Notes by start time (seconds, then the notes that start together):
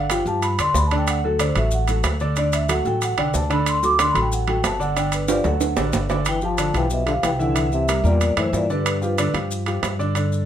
Already playing: G1 F#5
0.10 F3 F4 G4 G5, high timbale, low timbale, maracas
0.26 G2 F3 F4 G4 A5, maracas
0.42 B5, high timbale, maracas
0.58 E2 D3 D4 D5 C6, high timbale, maracas
0.74 D2 B5, low timbale, maracas
0.87 A5, maracas
0.91 D3 D4 D5, high timbale
0.98 G5
1.07 F#5, high timbale, maracas
1.24 F#3 F#4 A4
1.39 D3 D4 C5 D5, high timbale, low timbale, maracas
1.55 A1 F#3 F#4 A4 E5, high timbale, maracas
1.71 F#5, maracas
1.88 F#3 F#4 A4, high timbale, maracas
2.04 D2, high timbale, low timbale, maracas
2.20 D3 D4 D5, maracas
2.36 D3 D4 D5, high timbale, maracas
2.53 E5, high timbale, maracas
2.69 F#3 F#4 A4 F#5, high timbale, low timbale, maracas
2.85 A1 F#3 F#4 A4 G5, maracas
3.02 F#5, high timbale, maracas
3.18 C2 D3 D4 D5 G5, high timbale
3.34 D2 A5, low timbale, maracas
3.50 D3 D4 D5 B5, high timbale, maracas
3.66 C6, high timbale, maracas
3.83 F#3 F#4 A4 D6, maracas
3.99 D3 D4 D5 C6, high timbale, low timbale, maracas
4.11 F#3 F#4 A4 B5
4.15 A1, high timbale, maracas
4.22 G5
4.32 F#5, maracas
4.47 F#3 F#4 A4 G5, high timbale
4.64 G1 A5, high timbale, low timbale, maracas
4.80 D3 D4 D5 F#5, maracas
4.96 D3 D4 D5 G5, high timbale, maracas
5.12 B4, high timbale, maracas
5.28 F3 F4 G4 D5, high timbale, maracas
5.44 D2 F#3 F#4 A4 F#5, low timbale, maracas
5.61 high timbale, maracas
5.77 A1 D3 D4 D5, low timbale, maracas
5.93 G1, low timbale, maracas
6.09 D3 D4 D5, low timbale, maracas
6.25 E3 G5, high timbale, maracas
6.41 F3 F4 G4 A5, maracas
6.58 D3 D4 D5, high timbale, maracas
6.74 B1 E3 F3 F4 G4 G5, high timbale, maracas
6.90 B2 E5, maracas
7.06 D3 F3 F4 G4 F5, high timbale, maracas
7.23 C2 E3 G5, high timbale, low timbale, maracas
7.39 D3 E3 E4 E5 F#5, maracas
7.54 E3 E4 E5, high timbale, maracas
7.72 C3 E5, maracas
7.88 G3 G4 A#4, high timbale, maracas
8.04 E2 A#2 G3 G4 A#4 D5, maracas
8.21 high timbale, maracas
8.36 F#2 A2 E3 E4 C5 E5, high timbale, maracas
8.53 G2 A#2 D5, low timbale, maracas
8.70 G2 D3 D4 B4 D5, maracas
8.86 high timbale, maracas
9.01 F3 F4 G4, maracas
9.18 D3 D4 D5, high timbale, maracas
9.34 G2 F3 F4 G4, high timbale, maracas
9.51 maracas
9.66 F3 F4 G4, high timbale, maracas
9.83 G2, high timbale, low timbale, maracas
9.99 D3 D4 D5, maracas
10.15 D3 D4 D5, high timbale, maracas
10.32 maracas